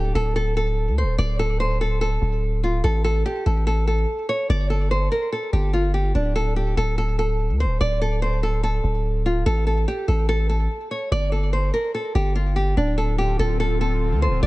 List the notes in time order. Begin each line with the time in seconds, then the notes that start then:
Already playing: D1 G4
0.15 D1 A4
0.36 A4
0.57 A4
0.87 D2
0.98 C5
1.03 D1
1.18 D1 D5
1.39 A4
1.60 C5
1.81 A4
2.01 A4
2.22 D1
2.64 F4
2.84 A1 A4
3.04 A4
3.26 G4
3.46 A1 A4
3.67 A4
3.87 A4
4.29 C#5
4.50 G1 D5
4.70 A4
4.91 C5
5.12 A#4
5.32 A4
5.53 G1 G4
5.73 F4
5.94 G4
6.15 D1 D4
6.36 A4
6.56 G4
6.77 D1 A4
6.98 A4
7.19 A4
7.50 D2
7.60 C5
7.65 D1
7.81 D1 D5
8.02 A4
8.22 C5
8.43 A4
8.63 A4
8.84 D1
9.26 F4
9.46 A1 A4
9.67 A4
9.88 G4
10.08 A1 A4
10.29 A4
10.49 A4
10.91 C#5
11.12 G1 D5
11.32 A4
11.53 C5
11.74 A#4
11.94 A4
12.15 G1 G4
12.35 F4
12.56 G4
12.77 D1 D3 C4 D4 F4
12.98 A4
13.18 G4
13.39 D1 A4
13.60 A4
13.81 A4
14.12 D2
14.22 C5
14.27 D1
14.43 D1 D5